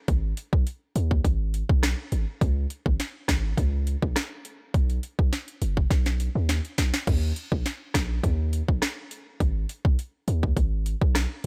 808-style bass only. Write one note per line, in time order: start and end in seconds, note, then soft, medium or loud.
0.08 0.34 G#1 loud
0.53 0.65 B1 medium
0.96 1.21 D#2 loud
1.25 1.63 G#1 loud
1.69 1.95 B1 loud
2.12 2.26 G#1 loud
2.41 2.67 C#2 loud
2.86 2.98 G#1 medium
3.29 3.54 G#1 medium
3.57 3.96 C#2 loud
4.02 4.14 A#1 loud
4.74 5.00 B1 loud
5.19 5.31 B1 loud
5.62 5.87 F#1 medium
5.90 6.29 B1 loud
6.35 6.61 D#2 medium
6.78 6.92 B1 medium
7.07 7.33 D#2 loud
7.52 7.64 A#1 loud
7.95 8.20 A#1 medium
8.23 8.62 D#2 loud
8.68 8.80 A#1 medium
9.40 9.66 G#1 loud
9.85 9.97 B1 medium
10.28 10.53 D#2 loud
10.57 10.95 G#1 loud
11.01 11.27 B1 loud